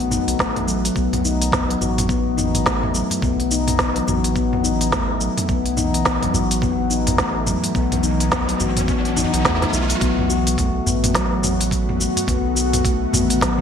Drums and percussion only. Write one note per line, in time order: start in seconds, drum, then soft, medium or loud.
0.00 open hi-hat soft
0.11 mid tom medium
0.11 udu medium
0.11 shaker medium
0.28 open hi-hat medium
0.28 shaker soft
0.39 kick loud
0.39 snare medium
0.39 shaker soft
0.56 mid tom medium
0.56 open hi-hat soft
0.68 shaker medium
0.85 open hi-hat soft
0.85 shaker soft
0.96 kick loud
0.96 shaker soft
1.13 mid tom medium
1.13 open hi-hat soft
1.25 shaker medium
1.42 open hi-hat medium
1.42 shaker soft
1.52 kick loud
1.52 snare medium
1.52 mid tom medium
1.52 shaker soft
1.70 open hi-hat soft
1.81 udu medium
1.81 shaker medium
1.98 mid tom medium
1.98 open hi-hat medium
1.98 shaker soft
2.09 kick loud
2.09 shaker soft
2.38 mid tom medium
2.38 shaker medium
2.54 open hi-hat medium
2.54 udu medium
2.54 shaker soft
2.66 kick medium
2.66 snare medium
2.66 shaker soft
2.83 mid tom medium
2.95 shaker medium
3.10 open hi-hat medium
3.10 udu medium
3.10 shaker soft
3.22 kick loud
3.22 mid tom medium
3.22 shaker soft
3.40 open hi-hat soft
3.51 shaker medium
3.68 mid tom medium
3.68 open hi-hat medium
3.68 shaker soft
3.79 kick medium
3.79 snare medium
3.79 shaker soft
3.96 open hi-hat soft
4.07 mid tom medium
4.07 udu medium
4.07 shaker medium
4.24 open hi-hat medium
4.24 shaker soft
4.36 kick medium
4.36 shaker soft
4.53 mid tom medium
4.64 udu medium
4.64 shaker medium
4.81 open hi-hat medium
4.81 shaker soft
4.92 kick loud
4.92 snare medium
4.92 mid tom medium
4.92 shaker soft
5.21 shaker medium
5.38 mid tom medium
5.38 open hi-hat medium
5.38 shaker soft
5.49 kick loud
5.49 shaker soft
5.66 open hi-hat soft
5.77 mid tom medium
5.77 shaker medium
5.94 open hi-hat medium
5.94 shaker soft
6.05 kick loud
6.05 snare medium
6.05 shaker soft
6.23 mid tom medium
6.23 open hi-hat soft
6.34 udu medium
6.34 shaker medium
6.51 open hi-hat medium
6.51 shaker soft
6.62 kick medium
6.62 mid tom medium
6.62 shaker soft
6.90 shaker medium
7.07 mid tom medium
7.07 open hi-hat medium
7.07 udu medium
7.07 shaker soft
7.18 kick medium
7.18 snare medium
7.18 shaker soft
7.47 mid tom medium
7.47 shaker medium
7.63 open hi-hat medium
7.63 udu medium
7.63 shaker soft
7.75 kick loud
7.75 shaker soft
7.92 mid tom medium
7.92 open hi-hat soft
8.03 shaker medium
8.20 open hi-hat medium
8.20 shaker soft
8.32 kick loud
8.32 snare loud
8.32 mid tom medium
8.32 shaker soft
8.49 open hi-hat soft
8.60 udu medium
8.60 shaker medium
8.77 mid tom medium
8.77 open hi-hat medium
8.77 shaker soft
8.88 kick loud
8.88 shaker soft
9.05 open hi-hat soft
9.17 mid tom medium
9.17 udu medium
9.17 shaker medium
9.34 open hi-hat medium
9.34 shaker soft
9.45 kick loud
9.45 snare medium
9.45 shaker soft
9.62 snare soft
9.62 mid tom medium
9.62 open hi-hat soft
9.73 shaker medium
9.90 open hi-hat medium
9.90 shaker soft
10.01 kick loud
10.01 open hi-hat soft
10.01 shaker soft
10.19 mid tom medium
10.30 shaker medium
10.47 open hi-hat medium
10.47 shaker soft
10.58 kick loud
10.58 mid tom medium
10.58 open hi-hat soft
10.58 shaker soft
10.87 udu medium
10.87 shaker medium
11.04 mid tom medium
11.04 open hi-hat medium
11.04 shaker soft
11.15 kick loud
11.15 snare medium
11.15 open hi-hat soft
11.15 shaker soft
11.43 mid tom medium
11.43 shaker medium
11.61 open hi-hat medium
11.61 shaker soft
11.71 kick loud
11.71 open hi-hat soft
11.71 shaker soft
11.89 mid tom medium
12.01 shaker medium
12.16 open hi-hat medium
12.16 udu medium
12.16 shaker soft
12.28 kick loud
12.28 mid tom medium
12.28 open hi-hat soft
12.28 shaker soft
12.57 shaker medium
12.73 mid tom medium
12.73 open hi-hat medium
12.73 shaker soft
12.85 kick loud
12.85 open hi-hat soft
12.85 shaker soft
13.13 mid tom medium
13.13 udu loud
13.13 shaker medium
13.30 open hi-hat medium
13.30 shaker soft
13.41 kick loud
13.41 snare medium
13.41 open hi-hat soft
13.41 shaker soft